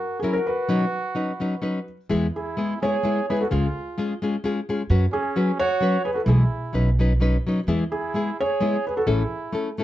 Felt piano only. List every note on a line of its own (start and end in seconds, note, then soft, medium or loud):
0.00 0.23 A#4 medium
0.20 0.33 G#4 medium
0.33 0.48 A#4 medium
0.47 1.85 B4 medium
2.36 2.85 G#4 medium
2.83 3.31 C#5 medium
3.30 3.41 B4 medium
3.40 3.50 A4 medium
3.51 4.18 G#4 medium
5.13 5.61 G#4 medium
5.59 6.07 C#5 loud
6.05 6.16 B4 medium
6.15 6.27 A4 medium
6.28 6.95 G#4 medium
7.92 8.41 G#4 medium
8.40 8.83 C#5 loud
8.87 8.96 B4 medium
8.97 9.08 A4 medium
9.07 9.74 G#4 medium